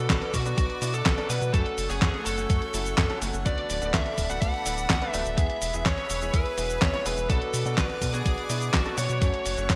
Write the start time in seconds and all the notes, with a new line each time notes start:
Already playing: B2 F#3 B3 D4 F#4 A4 B4 D5 F#5 D6
0.10 B1, kick, snare, clap, closed hi-hat, cabasa
0.22 closed hi-hat
0.34 B2 F#4, kick, open hi-hat, cabasa
0.46 B2 F#3 B3 D4 F#4, closed hi-hat, cabasa
0.58 B1 F#4, kick, closed hi-hat, cabasa
0.70 closed hi-hat
0.82 B2 F#3 B3 D4 E4, open hi-hat, cabasa
0.94 A4, closed hi-hat, cabasa
1.06 B1, kick, snare, clap, closed hi-hat, cabasa
1.18 B2 F#3 B3 D4 A4, closed hi-hat
1.30 B2 F#3 B3 D4 F#4 B4, open hi-hat, cabasa
1.42 B2, closed hi-hat, cabasa
1.54 F#2 F#3 A3 C#4 F#4 A4 C#5 C#6, kick, closed hi-hat, cabasa
1.66 closed hi-hat
1.78 F#1, open hi-hat, cabasa
1.90 F#1 F#3 A3 C#4 F#4 G#4, open hi-hat, cabasa
2.02 F#2, kick, snare, clap, closed hi-hat, cabasa
2.14 closed hi-hat
2.26 F#1 A4, open hi-hat, cabasa
2.38 F#3 A3 C#4 F#4, closed hi-hat, cabasa
2.50 F#2, kick, closed hi-hat, cabasa
2.62 closed hi-hat
2.74 F#1 F#3 A3 C#4 E4, open hi-hat, cabasa
2.86 closed hi-hat, cabasa
2.98 F#2, kick, snare, clap, closed hi-hat, cabasa
3.10 F#3 A3 C#4 A4, closed hi-hat
3.22 F#1 F#3 A3 C#4 F#4, open hi-hat, cabasa
3.34 F#1, closed hi-hat, cabasa
3.46 D2 D3 A3 B3 D4 F#4 A4 D5 B5, kick, closed hi-hat, cabasa
3.58 closed hi-hat
3.70 D1, open hi-hat, cabasa
3.82 D1 D3 A3 B3 D4 F#4, closed hi-hat, cabasa
3.94 D2 E5, kick, snare, clap, closed hi-hat, cabasa
4.06 closed hi-hat
4.18 D1, kick, open hi-hat, cabasa
4.30 D3 A3 B3 D4 F#4 F#5, cabasa
4.42 D2 F#5, kick, closed hi-hat, cabasa
4.54 closed hi-hat
4.66 D1 D3 A3 B3 D4 E4, open hi-hat, cabasa
4.78 closed hi-hat, cabasa
4.90 D2, kick, snare, clap, closed hi-hat, cabasa
5.02 D3 A3 B3 D4 B4, closed hi-hat
5.12 D1 A3 B3 D4 F#4 E5, open hi-hat, cabasa
5.26 D1, closed hi-hat, cabasa
5.38 E2 G#3 B3 E4 G#4 B4 E5 B5, kick, closed hi-hat, cabasa
5.50 closed hi-hat
5.62 E1, open hi-hat, cabasa
5.74 E1 G#3 B3 E4 G#4, closed hi-hat, cabasa
5.86 E2 C#5, kick, snare, clap, closed hi-hat, cabasa
5.98 closed hi-hat
6.10 E1, open hi-hat, cabasa
6.22 G#3 B3 E4 G#4, closed hi-hat, cabasa
6.34 E2 B4, kick, closed hi-hat, cabasa
6.46 closed hi-hat
6.58 E1 G#3 B3 E4 F#4, open hi-hat, cabasa
6.70 closed hi-hat, cabasa
6.82 E2 C#5, kick, snare, clap, closed hi-hat, cabasa
6.94 G#3 B3 E4 C#5, closed hi-hat
7.06 E1 G#3 B3 E4 G#4 B4, open hi-hat, cabasa
7.18 E1, closed hi-hat, cabasa
7.30 B1 B2 F#3 B3 D4 F#4 A4 D5 F#5 D6, kick, closed hi-hat, cabasa
7.42 closed hi-hat
7.54 B2, open hi-hat, cabasa
7.66 B2 F#3 B3 D4 F#4, closed hi-hat, cabasa
7.78 B1 B4, kick, snare, clap, closed hi-hat, cabasa
7.90 closed hi-hat
8.02 B2, kick, open hi-hat, cabasa
8.14 B2 F#3 B3 D4 F#4 G#4, closed hi-hat, cabasa
8.26 B1, kick, closed hi-hat, cabasa
8.38 closed hi-hat
8.50 B2 F#3 B3 D4 E4, open hi-hat, cabasa
8.62 closed hi-hat, cabasa
8.74 B1 F#4, kick, snare, clap, closed hi-hat, cabasa
8.86 B2 F#3 B3 D4 A4, closed hi-hat
8.98 B2 F#3 B3 D4 F#4 C#5, open hi-hat, cabasa
9.10 B2, closed hi-hat, cabasa
9.22 F#2 F#3 A3 C#4 F#4 A4 C#5 C#6, kick, closed hi-hat, cabasa
9.34 closed hi-hat
9.46 F#1, open hi-hat, cabasa
9.58 F#1 F#3 A3 C#4 F#4, closed hi-hat, cabasa
9.70 F#2, kick, snare, clap, closed hi-hat, cabasa